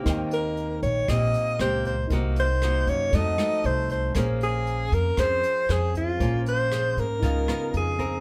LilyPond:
<<
  \new Staff \with { instrumentName = "Alto saxophone" } { \time 4/4 \key bes \minor \tempo 4 = 117 r8 bes'4 des''8 ees''4 c''8 c''8 | r8 c''4 des''8 ees''4 c''8 c''8 | r8 aes'4 bes'8 c''4 aes'8 f'8~ | f'8 c''4 bes'4. aes'4 | }
  \new Staff \with { instrumentName = "Grand piano" } { \time 4/4 \key bes \minor <ees' bes' c'' g''>1 | <ees' bes' c'' ges''>2 <a' ees'' ges''>2 | <des' bes' c'' aes''>1 | <des' bes' c'' aes''>2 <ees' bes' f''>2 | }
  \new Staff \with { instrumentName = "Nylon-string guitar" } { \time 4/4 \key bes \minor << { <bes c' g'>4. r8 <bes c' g'>4 <bes c' g'>8 r8 | <bes ees' ges'>8 r8 <bes ees' ges'>4 <a ees' ges'>8 <a ees' ges'>4. | <des' aes' c''>4. r8 <des' aes' c''>4 <des' aes' c''>4~ | <des' aes' c''>8 r8 <des' aes' c''>8 r8 <ces' f' bes'>8 <ces' f' bes'>4 <c' bes'>8 | } \\ { ees2 bes,2 | c2 f2 | bes2 f2 | bes2 des2 | } >> }
  \new Staff \with { instrumentName = "Upright bass" } { \clef bass \time 4/4 \key bes \minor ees,4. bes,,8 bes,,8 r8 des,4 | c,4. ges,8 f,8 r8 c,4 | bes,,4. f,8 f,8 r8 f,4 | bes,,4. aes,8 des,8 r8 f,4 | }
  \new DrumStaff \with { instrumentName = "Drums" } \drummode { \time 4/4 <hh bd ss>8 hh8 hh8 <hh bd>8 <hh bd ss>8 hh8 <hh ss>8 <hh bd>8 | <hh bd>8 hh8 <hh ss>8 <hh bd>8 <hh bd>8 <hh ss>8 hh8 <hh bd>8 | <hh bd ss>8 hh8 hh8 <hh bd>8 <hh bd ss>8 hh8 <hh ss>8 <hh bd>8 | <hh bd>8 hh8 <hh ss>8 <hh bd>8 <hh bd>8 <hh ss>8 hh8 <hh bd>8 | }
>>